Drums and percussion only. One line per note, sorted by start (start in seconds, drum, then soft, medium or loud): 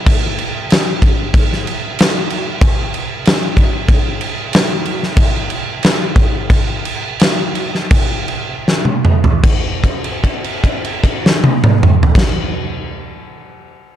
0.06 kick loud
0.06 crash loud
0.38 crash medium
0.70 snare loud
0.70 crash medium
1.02 kick medium
1.02 crash medium
1.34 kick loud
1.34 crash medium
1.53 snare soft
1.67 crash medium
1.99 snare loud
1.99 crash medium
2.30 crash medium
2.61 kick loud
2.61 crash medium
2.94 crash medium
3.25 snare loud
3.25 crash medium
3.57 kick medium
3.57 crash medium
3.89 kick loud
3.89 crash medium
4.21 crash medium
4.53 snare loud
4.53 crash medium
4.85 crash medium
5.03 snare soft
5.17 kick loud
5.17 crash loud
5.50 crash medium
5.83 snare loud
5.83 crash medium
6.16 kick loud
6.16 crash medium
6.50 kick loud
6.50 crash medium
6.85 crash medium
7.20 snare loud
7.20 crash medium
7.55 crash medium
7.75 snare soft
7.91 kick loud
7.91 crash loud
8.28 crash medium
8.68 snare medium
8.85 high tom medium
9.05 mid tom medium
9.24 floor tom loud
9.43 kick loud
9.43 crash loud
9.84 kick medium
9.84 crash medium
10.04 crash medium
10.24 kick medium
10.24 crash soft
10.44 crash medium
10.64 kick medium
10.64 crash medium
10.84 crash medium
11.04 kick medium
11.04 crash medium
11.26 snare medium
11.44 high tom loud
11.64 mid tom loud
11.83 mid tom loud
12.03 floor tom loud
12.15 kick loud
12.15 snare loud
12.15 crash medium